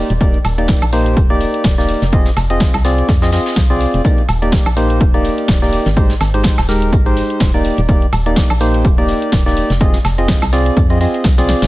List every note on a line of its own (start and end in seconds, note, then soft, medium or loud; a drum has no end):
0.00 0.13 A#3 medium
0.00 0.13 D#4 medium
0.00 0.13 G4 medium
0.00 0.13 D5 loud
0.10 0.39 D#1 loud
0.10 closed hi-hat medium
0.21 0.38 A#3 medium
0.21 0.38 D#4 medium
0.21 0.38 G4 medium
0.21 0.38 D5 medium
0.21 kick loud
0.21 closed hi-hat medium
0.34 closed hi-hat soft
0.45 0.74 D#1 loud
0.45 closed hi-hat medium
0.45 open hi-hat loud
0.45 high woodblock medium
0.58 0.85 A#3 medium
0.58 0.85 D#4 medium
0.58 0.85 G4 medium
0.58 0.85 D5 medium
0.58 closed hi-hat medium
0.68 kick loud
0.68 snare loud
0.68 closed hi-hat medium
0.68 open hi-hat medium
0.82 1.18 A#1 loud
0.82 closed hi-hat soft
0.82 high woodblock medium
0.93 1.20 A#3 medium
0.93 1.20 D#4 medium
0.93 1.20 G4 medium
0.93 1.20 C5 loud
0.93 closed hi-hat medium
0.93 open hi-hat loud
1.06 closed hi-hat soft
1.17 1.46 D#1 medium
1.17 kick loud
1.17 closed hi-hat soft
1.17 closed hi-hat medium
1.30 1.75 A#3 medium
1.30 1.75 D#4 medium
1.30 1.75 G4 medium
1.30 1.75 D5 loud
1.30 closed hi-hat soft
1.41 closed hi-hat medium
1.41 open hi-hat loud
1.54 closed hi-hat soft
1.64 1.94 D#1 medium
1.64 kick loud
1.64 snare loud
1.64 closed hi-hat soft
1.64 closed hi-hat medium
1.78 2.05 A#3 medium
1.78 2.05 D#4 medium
1.78 2.05 G4 medium
1.78 2.05 D5 loud
1.78 snare soft
1.78 closed hi-hat soft
1.89 closed hi-hat medium
1.89 open hi-hat loud
2.02 2.31 F1 loud
2.02 snare medium
2.02 closed hi-hat soft
2.12 2.30 C4 medium
2.12 2.30 F4 medium
2.12 2.30 G#4 medium
2.12 2.30 D#5 medium
2.12 kick loud
2.12 closed hi-hat medium
2.12 closed hi-hat soft
2.26 snare soft
2.26 closed hi-hat soft
2.36 2.66 F1 loud
2.36 snare medium
2.36 closed hi-hat medium
2.36 open hi-hat loud
2.36 high woodblock medium
2.50 2.77 C4 medium
2.50 2.77 F4 medium
2.50 2.77 G#4 medium
2.50 2.77 D#5 medium
2.50 closed hi-hat soft
2.60 kick loud
2.60 snare loud
2.60 closed hi-hat medium
2.73 3.03 C2 loud
2.73 snare medium
2.73 closed hi-hat soft
2.73 high woodblock medium
2.84 3.12 C4 medium
2.84 3.12 F4 medium
2.84 3.12 G#4 medium
2.84 3.12 D5 loud
2.84 snare medium
2.84 closed hi-hat medium
2.84 open hi-hat loud
2.98 closed hi-hat soft
3.09 3.38 F2 loud
3.09 kick loud
3.09 snare medium
3.09 closed hi-hat soft
3.09 open hi-hat medium
3.22 3.31 C4 medium
3.22 3.31 F4 medium
3.22 3.31 G#4 medium
3.22 3.31 D#5 loud
3.22 snare loud
3.22 closed hi-hat soft
3.22 open hi-hat medium
3.32 3.60 C4 medium
3.32 3.60 F4 medium
3.32 3.60 G#4 medium
3.32 3.60 D#5 medium
3.32 snare medium
3.32 open hi-hat loud
3.32 open hi-hat medium
3.46 snare medium
3.46 closed hi-hat soft
3.46 open hi-hat medium
3.56 3.86 C2 medium
3.56 kick loud
3.56 snare loud
3.56 closed hi-hat soft
3.70 4.02 C4 loud
3.70 4.02 F4 medium
3.70 4.02 G#4 medium
3.70 4.02 D5 loud
3.70 closed hi-hat soft
3.80 closed hi-hat medium
3.80 open hi-hat loud
3.94 4.01 F1 medium
3.94 closed hi-hat medium
4.05 4.22 A#3 medium
4.05 4.22 D#4 medium
4.05 4.22 G4 medium
4.05 4.22 D5 medium
4.05 kick loud
4.05 closed hi-hat soft
4.05 closed hi-hat medium
4.18 closed hi-hat soft
4.29 4.58 D#1 loud
4.29 closed hi-hat medium
4.29 open hi-hat loud
4.29 high woodblock medium
4.42 4.69 A#3 medium
4.42 4.69 D#4 medium
4.42 4.69 G4 medium
4.42 4.69 D5 medium
4.42 closed hi-hat medium
4.52 kick loud
4.52 snare loud
4.52 closed hi-hat medium
4.52 open hi-hat medium
4.66 5.02 A#1 loud
4.66 closed hi-hat soft
4.66 high woodblock medium
4.77 5.04 A#3 medium
4.77 5.04 D#4 medium
4.77 5.04 G4 medium
4.77 5.04 C5 loud
4.77 closed hi-hat medium
4.77 open hi-hat loud
4.90 closed hi-hat soft
5.00 5.30 D#1 medium
5.00 kick loud
5.00 closed hi-hat medium
5.00 closed hi-hat soft
5.14 5.59 A#3 medium
5.14 5.59 D#4 medium
5.14 5.59 G4 medium
5.14 5.59 D5 loud
5.14 closed hi-hat soft
5.24 closed hi-hat medium
5.24 open hi-hat loud
5.38 closed hi-hat soft
5.48 5.78 D#1 medium
5.48 kick loud
5.48 snare loud
5.48 closed hi-hat medium
5.48 closed hi-hat soft
5.62 5.89 A#3 medium
5.62 5.89 D#4 medium
5.62 5.89 G4 medium
5.62 5.89 D5 loud
5.62 snare soft
5.62 closed hi-hat soft
5.73 closed hi-hat medium
5.73 open hi-hat loud
5.86 6.15 G#1 medium
5.86 snare medium
5.86 closed hi-hat soft
5.96 6.14 G#3 medium
5.96 6.14 D#4 medium
5.96 6.14 G4 medium
5.96 6.14 C5 medium
5.96 kick loud
5.96 closed hi-hat medium
6.10 snare soft
6.10 closed hi-hat soft
6.20 6.50 G#1 loud
6.20 snare medium
6.20 closed hi-hat medium
6.20 open hi-hat loud
6.20 high woodblock medium
6.34 6.61 G#3 medium
6.34 6.61 D#4 medium
6.34 6.61 G4 medium
6.34 6.61 C5 medium
6.34 closed hi-hat medium
6.43 kick loud
6.43 snare loud
6.43 closed hi-hat medium
6.58 6.94 D#1 loud
6.58 snare medium
6.58 closed hi-hat soft
6.58 high woodblock medium
6.69 6.96 G#3 medium
6.69 6.96 D#4 medium
6.69 6.96 G4 medium
6.69 6.96 A#4 loud
6.69 snare medium
6.69 closed hi-hat medium
6.69 open hi-hat loud
6.82 closed hi-hat medium
6.92 7.22 G#1 medium
6.92 kick loud
6.92 closed hi-hat medium
7.06 7.51 G#3 medium
7.06 7.51 D#4 medium
7.06 7.51 G4 medium
7.06 7.51 C5 loud
7.06 closed hi-hat soft
7.17 closed hi-hat medium
7.17 open hi-hat loud
7.30 closed hi-hat soft
7.40 7.70 D#1 medium
7.40 kick loud
7.40 snare loud
7.40 closed hi-hat medium
7.40 closed hi-hat soft
7.54 7.81 A#3 medium
7.54 7.81 D#4 medium
7.54 7.81 G4 medium
7.54 7.81 D5 loud
7.54 closed hi-hat soft
7.64 closed hi-hat medium
7.64 open hi-hat loud
7.78 8.07 D#1 loud
7.78 closed hi-hat medium
7.89 8.06 A#3 medium
7.89 8.06 D#4 medium
7.89 8.06 G4 medium
7.89 8.06 D5 medium
7.89 kick loud
7.89 closed hi-hat medium
8.02 closed hi-hat soft
8.13 8.42 D#1 loud
8.13 closed hi-hat medium
8.13 open hi-hat loud
8.13 high woodblock medium
8.26 8.53 A#3 medium
8.26 8.53 D#4 medium
8.26 8.53 G4 medium
8.26 8.53 D5 medium
8.26 closed hi-hat medium
8.36 kick loud
8.36 snare loud
8.36 closed hi-hat medium
8.36 open hi-hat medium
8.50 8.86 A#1 loud
8.50 closed hi-hat soft
8.50 high woodblock medium
8.61 8.88 A#3 medium
8.61 8.88 D#4 medium
8.61 8.88 G4 medium
8.61 8.88 C5 loud
8.61 closed hi-hat medium
8.61 open hi-hat loud
8.74 closed hi-hat medium
8.85 9.14 D#1 medium
8.85 kick loud
8.85 closed hi-hat medium
8.98 9.43 A#3 medium
8.98 9.43 D#4 medium
8.98 9.43 G4 medium
8.98 9.43 D5 medium
8.98 closed hi-hat soft
9.08 closed hi-hat medium
9.08 open hi-hat loud
9.22 closed hi-hat soft
9.32 9.62 D#1 medium
9.32 kick loud
9.32 snare loud
9.32 closed hi-hat medium
9.46 9.73 A#3 medium
9.46 9.73 D#4 medium
9.46 9.73 G4 medium
9.46 9.73 D5 loud
9.46 snare soft
9.46 closed hi-hat soft
9.57 closed hi-hat medium
9.57 open hi-hat loud
9.70 9.99 F1 loud
9.70 snare medium
9.70 closed hi-hat medium
9.81 9.98 C4 medium
9.81 9.98 F4 medium
9.81 9.98 G#4 medium
9.81 9.98 D#5 medium
9.81 kick loud
9.81 closed hi-hat medium
9.81 closed hi-hat loud
9.94 snare soft
9.94 closed hi-hat soft
10.05 10.34 F1 medium
10.05 snare soft
10.05 closed hi-hat medium
10.05 open hi-hat loud
10.05 high woodblock medium
10.18 10.45 C4 medium
10.18 10.45 F4 medium
10.18 10.45 G#4 medium
10.18 10.45 D#5 medium
10.18 closed hi-hat medium
10.28 kick loud
10.28 snare loud
10.28 closed hi-hat medium
10.42 10.71 C2 loud
10.42 snare medium
10.42 closed hi-hat soft
10.42 high woodblock medium
10.53 10.80 C4 medium
10.53 10.80 F4 medium
10.53 10.80 G#4 medium
10.53 10.80 D5 loud
10.53 snare medium
10.53 closed hi-hat medium
10.53 open hi-hat loud
10.66 closed hi-hat medium
10.77 11.06 F2 loud
10.77 kick loud
10.77 closed hi-hat medium
10.90 10.99 C4 medium
10.90 10.99 F4 medium
10.90 10.99 G#4 medium
10.90 10.99 D#5 loud
10.90 closed hi-hat soft
11.01 11.28 C4 medium
11.01 11.28 F4 medium
11.01 11.28 G#4 medium
11.01 11.28 D#5 medium
11.01 closed hi-hat medium
11.01 open hi-hat loud
11.14 closed hi-hat medium
11.24 11.54 C2 loud
11.24 kick loud
11.24 snare loud
11.24 closed hi-hat medium
11.38 11.67 C4 loud
11.38 11.67 F4 medium
11.38 11.67 G#4 medium
11.38 11.67 D5 loud
11.38 snare medium
11.38 closed hi-hat soft
11.49 snare medium
11.49 closed hi-hat medium
11.49 open hi-hat loud
11.62 11.67 F1 medium
11.62 snare medium
11.62 closed hi-hat medium